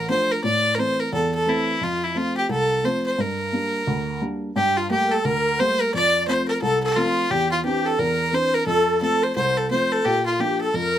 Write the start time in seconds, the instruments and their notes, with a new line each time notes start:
0.09 upright piano F3 A3 D4, fiddle C5
0.32 fiddle A#4
0.44 upright piano A2, fiddle D5
0.75 upright piano E3 A3 C4, fiddle A#4
0.80 fiddle C5
1.00 fiddle A#4
1.13 upright piano E2, fiddle A4
1.35 fiddle A4
1.46 upright piano E3 A3 C4, fiddle E4
1.81 upright piano F2, fiddle F4
2.03 fiddle E4
2.15 upright piano F3 A3 C4, fiddle F4
2.37 fiddle G4
2.49 upright piano C2, fiddle A4
2.84 upright piano F3 A3 C4, fiddle C5
3.06 fiddle C5
3.18 upright piano G2, fiddle A#4
3.53 upright piano G3 A#3 D4
3.87 upright piano D2
4.21 upright piano G3 A#3 D4
4.55 upright piano G2, flute G4, fiddle G4
4.77 flute F4, fiddle F4
4.90 upright piano G3 A3 A#3, flute G4, fiddle G4
5.06 flute A#4
5.11 fiddle A4, flute A4
5.24 upright piano D2, flute A#4, fiddle A#4
5.58 upright piano G3 A3 A#3, flute C5, fiddle C5
5.81 fiddle A#4, flute A#4
5.94 upright piano F2, flute D5, fiddle D5
6.27 upright piano F3 A3 C4, fiddle C5, flute C5
6.48 fiddle A#4, flute A#4
6.61 upright piano C2, fiddle A4, flute A4
6.82 flute A4, fiddle A4
6.96 upright piano F3 A3 C4, flute F4, fiddle F4
7.30 upright piano E2, flute G4, fiddle G4
7.51 flute F4, fiddle F4
7.64 upright piano E3 C4 D4, flute G4, fiddle G4
7.85 flute A4, fiddle A4
7.98 upright piano E2, flute A#4, fiddle A#4
8.33 upright piano E3 C4 D4, flute C5, fiddle C5
8.54 flute A#4, fiddle A#4
8.66 upright piano F2, fiddle A4, flute A4
9.01 upright piano F3 A3 C4, flute A4, fiddle A4
9.22 flute C5, fiddle C5
9.36 upright piano C2, fiddle C5, flute C5
9.57 fiddle A4
9.70 upright piano F3 A3 C4, flute C5, fiddle C5
9.92 fiddle A4
10.05 upright piano A#2, fiddle G4, flute G4
10.26 flute F4, fiddle F4
10.39 upright piano F3 A#3 D4, flute G4, fiddle G4
10.61 fiddle A4, flute A4
10.73 upright piano F2, flute A#4, fiddle A#4